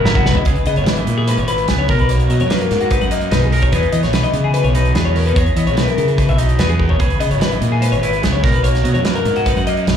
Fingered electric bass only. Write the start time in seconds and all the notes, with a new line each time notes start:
0.05 F#1
0.25 C#2
0.46 C#2
0.67 C#3
0.76 G#1
1.07 A#2
1.38 G#1
1.68 C#2
1.89 B1
2.30 B2
2.40 F#2
2.71 G#2
3.01 F#2
3.31 B1
3.73 E2
3.93 E3
4.04 B1
4.33 C#3
4.64 B1
4.95 E2
5.36 E2
5.57 E3
5.67 B1
5.98 C#3
6.28 B1
6.59 E2
7.00 C#2
7.20 C#3
7.31 G#1
7.61 A#2
7.92 G#1
8.23 C#2
8.44 B1
8.84 B2
8.94 F#2
9.25 G#2
9.56 F#2
9.87 B1